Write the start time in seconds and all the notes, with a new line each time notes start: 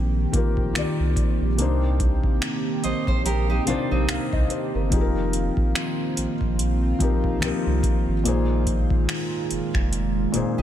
Already playing: A#1 D#3 A#3 C4 F4 G4 C5
0.32 A#1 D#3 A#3 F4 G4, kick, closed hi-hat
0.37 A#4
0.57 A#1, kick
0.73 C2 D#3 A#3 F4 G4, finger snap, closed hi-hat
0.78 D5
1.00 C2
1.16 kick, closed hi-hat
1.41 A#1
1.57 C2 C3 D#3 A#3 D4 D#4, closed hi-hat
1.61 C5
2.00 kick, closed hi-hat
2.24 kick
2.42 finger snap, closed hi-hat
2.84 A#1 C5 D#5, closed hi-hat
3.07 A#1 C5, kick
3.25 G4 A#4, closed hi-hat
3.50 D#4 G4
3.65 A#1 C3 A#3 D4 D#4 F4, closed hi-hat
3.70 C5
3.91 A#1 C4 D#4
4.09 C2 F5, finger snap, closed hi-hat
4.33 C2 D#5, kick
4.50 C5, closed hi-hat
4.75 G1 A#4
4.90 F1 F3 A#3 C4 D#4 F4 G4, kick, closed hi-hat
4.94 G#4
5.01 A#4
5.33 closed hi-hat
5.57 kick
5.75 finger snap, closed hi-hat
6.17 A#1, closed hi-hat
6.41 A#1, kick
6.59 closed hi-hat
6.99 A#1 F3 C4 D#4 G4, kick, closed hi-hat
7.03 A#4
7.24 A#1, kick
7.40 C2 F3 C4 D#4 G4, finger snap, closed hi-hat
7.45 A#4
7.67 C2
7.83 kick, closed hi-hat
8.08 G#1
8.24 A#1 A#2 G#3 A#3 D#4 G#4, closed hi-hat
8.28 C5
8.67 kick, closed hi-hat
8.90 kick
9.09 finger snap, closed hi-hat
9.51 F1, closed hi-hat
9.74 F1, finger snap, kick
9.93 closed hi-hat
10.32 F1 A#2 A#3 D#4 G#4, closed hi-hat
10.37 C5
10.58 F1 D#4 G4